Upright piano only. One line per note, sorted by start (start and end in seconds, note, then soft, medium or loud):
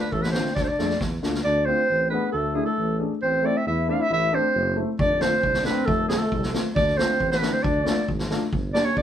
0.34 0.45 A3 medium
0.34 0.46 D4 medium
0.34 0.46 F4 medium
0.79 0.90 A3 medium
0.79 0.90 D4 medium
0.79 0.90 G#4 medium
1.22 1.34 A3 medium
1.22 1.34 D4 medium
1.22 1.34 F4 medium
1.67 1.78 A3 medium
1.67 1.78 D4 medium
1.67 1.79 F4 medium
2.11 2.22 A3 medium
2.11 2.23 D4 medium
2.11 2.23 G#4 medium
2.54 2.66 A3 medium
2.54 2.66 D4 medium
2.54 2.67 E4 medium
2.99 3.11 A3 medium
2.99 3.11 D4 medium
2.99 3.11 G#4 medium
3.43 3.55 A3 medium
3.43 3.55 C4 medium
3.43 3.55 E4 medium
3.87 3.99 A3 medium
3.87 4.00 C4 medium
3.87 4.00 D4 medium
4.32 4.43 A3 medium
4.32 4.44 C4 medium
4.32 4.44 D4 medium
4.76 4.87 A3 medium
4.76 4.88 C4 medium
4.76 4.88 E4 medium
5.20 5.32 A3 medium
5.20 5.32 C4 medium
5.20 5.33 F4 medium
5.65 5.76 A3 medium
5.65 5.76 C4 medium
5.65 5.77 D4 medium
6.09 6.20 A3 medium
6.09 6.21 C4 medium
6.09 6.21 F4 medium
6.53 6.65 A3 medium
6.53 6.65 C4 medium
6.53 6.65 F4 medium
6.98 7.09 A3 medium
6.98 7.09 D4 medium
6.98 7.10 F4 medium
7.41 7.53 A3 medium
7.41 7.53 D4 medium
7.41 7.54 E4 medium
7.85 7.97 A3 medium
7.85 7.97 D4 medium
7.85 7.98 F4 medium
8.30 8.41 A3 medium
8.30 8.42 D4 medium
8.30 8.42 F4 medium
8.74 8.85 A#3 medium
8.74 8.86 D4 medium
8.74 8.86 G4 medium